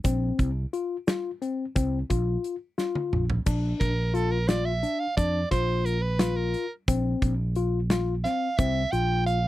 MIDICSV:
0, 0, Header, 1, 5, 480
1, 0, Start_track
1, 0, Tempo, 682594
1, 34, Time_signature, 5, 3, 24, 8
1, 6665, End_track
2, 0, Start_track
2, 0, Title_t, "Soprano saxophone"
2, 0, Program_c, 0, 64
2, 2674, Note_on_c, 0, 70, 72
2, 2918, Note_on_c, 0, 69, 74
2, 2928, Note_off_c, 0, 70, 0
2, 3033, Note_on_c, 0, 70, 74
2, 3044, Note_off_c, 0, 69, 0
2, 3153, Note_on_c, 0, 74, 83
2, 3164, Note_off_c, 0, 70, 0
2, 3272, Note_on_c, 0, 76, 87
2, 3282, Note_off_c, 0, 74, 0
2, 3515, Note_on_c, 0, 77, 83
2, 3525, Note_off_c, 0, 76, 0
2, 3632, Note_off_c, 0, 77, 0
2, 3636, Note_on_c, 0, 74, 89
2, 3861, Note_off_c, 0, 74, 0
2, 3878, Note_on_c, 0, 72, 84
2, 4119, Note_on_c, 0, 70, 76
2, 4130, Note_off_c, 0, 72, 0
2, 4232, Note_on_c, 0, 71, 72
2, 4243, Note_off_c, 0, 70, 0
2, 4473, Note_on_c, 0, 70, 74
2, 4484, Note_off_c, 0, 71, 0
2, 4716, Note_off_c, 0, 70, 0
2, 5797, Note_on_c, 0, 77, 88
2, 6030, Note_on_c, 0, 76, 92
2, 6040, Note_off_c, 0, 77, 0
2, 6269, Note_on_c, 0, 79, 95
2, 6280, Note_off_c, 0, 76, 0
2, 6513, Note_off_c, 0, 79, 0
2, 6516, Note_on_c, 0, 77, 91
2, 6665, Note_off_c, 0, 77, 0
2, 6665, End_track
3, 0, Start_track
3, 0, Title_t, "Tine electric piano"
3, 0, Program_c, 1, 4
3, 30, Note_on_c, 1, 60, 83
3, 349, Note_off_c, 1, 60, 0
3, 516, Note_on_c, 1, 65, 66
3, 675, Note_off_c, 1, 65, 0
3, 755, Note_on_c, 1, 65, 66
3, 915, Note_off_c, 1, 65, 0
3, 997, Note_on_c, 1, 60, 69
3, 1156, Note_off_c, 1, 60, 0
3, 1234, Note_on_c, 1, 60, 83
3, 1394, Note_off_c, 1, 60, 0
3, 1476, Note_on_c, 1, 65, 68
3, 1794, Note_off_c, 1, 65, 0
3, 1956, Note_on_c, 1, 65, 71
3, 2275, Note_off_c, 1, 65, 0
3, 2435, Note_on_c, 1, 62, 80
3, 2754, Note_off_c, 1, 62, 0
3, 2910, Note_on_c, 1, 65, 70
3, 3072, Note_off_c, 1, 65, 0
3, 3154, Note_on_c, 1, 65, 71
3, 3315, Note_off_c, 1, 65, 0
3, 3395, Note_on_c, 1, 62, 65
3, 3555, Note_off_c, 1, 62, 0
3, 3635, Note_on_c, 1, 62, 88
3, 3795, Note_off_c, 1, 62, 0
3, 3875, Note_on_c, 1, 65, 64
3, 4194, Note_off_c, 1, 65, 0
3, 4358, Note_on_c, 1, 65, 76
3, 4676, Note_off_c, 1, 65, 0
3, 4839, Note_on_c, 1, 60, 86
3, 5156, Note_off_c, 1, 60, 0
3, 5319, Note_on_c, 1, 65, 72
3, 5478, Note_off_c, 1, 65, 0
3, 5566, Note_on_c, 1, 65, 78
3, 5722, Note_off_c, 1, 65, 0
3, 5803, Note_on_c, 1, 60, 66
3, 5960, Note_off_c, 1, 60, 0
3, 6041, Note_on_c, 1, 60, 92
3, 6199, Note_off_c, 1, 60, 0
3, 6278, Note_on_c, 1, 65, 67
3, 6594, Note_off_c, 1, 65, 0
3, 6665, End_track
4, 0, Start_track
4, 0, Title_t, "Fretless electric bass"
4, 0, Program_c, 2, 35
4, 32, Note_on_c, 2, 34, 88
4, 213, Note_off_c, 2, 34, 0
4, 272, Note_on_c, 2, 36, 92
4, 453, Note_off_c, 2, 36, 0
4, 1238, Note_on_c, 2, 36, 82
4, 1418, Note_off_c, 2, 36, 0
4, 1477, Note_on_c, 2, 34, 87
4, 1658, Note_off_c, 2, 34, 0
4, 2200, Note_on_c, 2, 34, 79
4, 2380, Note_off_c, 2, 34, 0
4, 2437, Note_on_c, 2, 34, 91
4, 2618, Note_off_c, 2, 34, 0
4, 2678, Note_on_c, 2, 34, 82
4, 3399, Note_off_c, 2, 34, 0
4, 3640, Note_on_c, 2, 41, 85
4, 3820, Note_off_c, 2, 41, 0
4, 3877, Note_on_c, 2, 34, 74
4, 4598, Note_off_c, 2, 34, 0
4, 4839, Note_on_c, 2, 34, 97
4, 5019, Note_off_c, 2, 34, 0
4, 5080, Note_on_c, 2, 34, 94
4, 5799, Note_off_c, 2, 34, 0
4, 6041, Note_on_c, 2, 36, 93
4, 6219, Note_off_c, 2, 36, 0
4, 6277, Note_on_c, 2, 34, 75
4, 6665, Note_off_c, 2, 34, 0
4, 6665, End_track
5, 0, Start_track
5, 0, Title_t, "Drums"
5, 30, Note_on_c, 9, 42, 79
5, 33, Note_on_c, 9, 36, 93
5, 34, Note_on_c, 9, 82, 60
5, 100, Note_off_c, 9, 42, 0
5, 104, Note_off_c, 9, 36, 0
5, 104, Note_off_c, 9, 82, 0
5, 274, Note_on_c, 9, 42, 63
5, 275, Note_on_c, 9, 36, 73
5, 344, Note_off_c, 9, 42, 0
5, 345, Note_off_c, 9, 36, 0
5, 517, Note_on_c, 9, 42, 58
5, 587, Note_off_c, 9, 42, 0
5, 757, Note_on_c, 9, 82, 43
5, 759, Note_on_c, 9, 38, 100
5, 759, Note_on_c, 9, 42, 81
5, 828, Note_off_c, 9, 82, 0
5, 829, Note_off_c, 9, 38, 0
5, 829, Note_off_c, 9, 42, 0
5, 1000, Note_on_c, 9, 42, 58
5, 1070, Note_off_c, 9, 42, 0
5, 1236, Note_on_c, 9, 42, 73
5, 1238, Note_on_c, 9, 36, 92
5, 1241, Note_on_c, 9, 82, 55
5, 1306, Note_off_c, 9, 42, 0
5, 1309, Note_off_c, 9, 36, 0
5, 1312, Note_off_c, 9, 82, 0
5, 1478, Note_on_c, 9, 42, 59
5, 1479, Note_on_c, 9, 36, 67
5, 1548, Note_off_c, 9, 42, 0
5, 1550, Note_off_c, 9, 36, 0
5, 1718, Note_on_c, 9, 42, 54
5, 1788, Note_off_c, 9, 42, 0
5, 1956, Note_on_c, 9, 38, 48
5, 1962, Note_on_c, 9, 82, 39
5, 2027, Note_off_c, 9, 38, 0
5, 2032, Note_off_c, 9, 82, 0
5, 2077, Note_on_c, 9, 48, 56
5, 2148, Note_off_c, 9, 48, 0
5, 2200, Note_on_c, 9, 45, 73
5, 2270, Note_off_c, 9, 45, 0
5, 2318, Note_on_c, 9, 43, 74
5, 2388, Note_off_c, 9, 43, 0
5, 2435, Note_on_c, 9, 49, 83
5, 2438, Note_on_c, 9, 36, 93
5, 2439, Note_on_c, 9, 82, 52
5, 2505, Note_off_c, 9, 49, 0
5, 2508, Note_off_c, 9, 36, 0
5, 2509, Note_off_c, 9, 82, 0
5, 2676, Note_on_c, 9, 42, 52
5, 2678, Note_on_c, 9, 36, 71
5, 2747, Note_off_c, 9, 42, 0
5, 2749, Note_off_c, 9, 36, 0
5, 2917, Note_on_c, 9, 42, 57
5, 2988, Note_off_c, 9, 42, 0
5, 3155, Note_on_c, 9, 38, 91
5, 3155, Note_on_c, 9, 42, 73
5, 3155, Note_on_c, 9, 82, 47
5, 3225, Note_off_c, 9, 82, 0
5, 3226, Note_off_c, 9, 38, 0
5, 3226, Note_off_c, 9, 42, 0
5, 3399, Note_on_c, 9, 42, 55
5, 3470, Note_off_c, 9, 42, 0
5, 3639, Note_on_c, 9, 36, 99
5, 3641, Note_on_c, 9, 42, 76
5, 3643, Note_on_c, 9, 82, 56
5, 3710, Note_off_c, 9, 36, 0
5, 3711, Note_off_c, 9, 42, 0
5, 3713, Note_off_c, 9, 82, 0
5, 3878, Note_on_c, 9, 36, 75
5, 3879, Note_on_c, 9, 38, 32
5, 3879, Note_on_c, 9, 42, 57
5, 3949, Note_off_c, 9, 36, 0
5, 3949, Note_off_c, 9, 38, 0
5, 3949, Note_off_c, 9, 42, 0
5, 4119, Note_on_c, 9, 42, 56
5, 4190, Note_off_c, 9, 42, 0
5, 4355, Note_on_c, 9, 38, 107
5, 4355, Note_on_c, 9, 42, 82
5, 4364, Note_on_c, 9, 82, 47
5, 4426, Note_off_c, 9, 38, 0
5, 4426, Note_off_c, 9, 42, 0
5, 4435, Note_off_c, 9, 82, 0
5, 4598, Note_on_c, 9, 42, 54
5, 4668, Note_off_c, 9, 42, 0
5, 4838, Note_on_c, 9, 36, 98
5, 4838, Note_on_c, 9, 42, 75
5, 4843, Note_on_c, 9, 82, 53
5, 4908, Note_off_c, 9, 36, 0
5, 4908, Note_off_c, 9, 42, 0
5, 4913, Note_off_c, 9, 82, 0
5, 5077, Note_on_c, 9, 42, 56
5, 5078, Note_on_c, 9, 36, 79
5, 5147, Note_off_c, 9, 42, 0
5, 5148, Note_off_c, 9, 36, 0
5, 5313, Note_on_c, 9, 42, 54
5, 5383, Note_off_c, 9, 42, 0
5, 5556, Note_on_c, 9, 38, 104
5, 5556, Note_on_c, 9, 42, 73
5, 5561, Note_on_c, 9, 82, 42
5, 5626, Note_off_c, 9, 38, 0
5, 5626, Note_off_c, 9, 42, 0
5, 5632, Note_off_c, 9, 82, 0
5, 5803, Note_on_c, 9, 38, 32
5, 5803, Note_on_c, 9, 42, 54
5, 5873, Note_off_c, 9, 38, 0
5, 5873, Note_off_c, 9, 42, 0
5, 6036, Note_on_c, 9, 42, 68
5, 6039, Note_on_c, 9, 36, 99
5, 6042, Note_on_c, 9, 82, 47
5, 6106, Note_off_c, 9, 42, 0
5, 6109, Note_off_c, 9, 36, 0
5, 6113, Note_off_c, 9, 82, 0
5, 6279, Note_on_c, 9, 42, 55
5, 6288, Note_on_c, 9, 82, 15
5, 6349, Note_off_c, 9, 42, 0
5, 6358, Note_off_c, 9, 82, 0
5, 6520, Note_on_c, 9, 42, 57
5, 6590, Note_off_c, 9, 42, 0
5, 6665, End_track
0, 0, End_of_file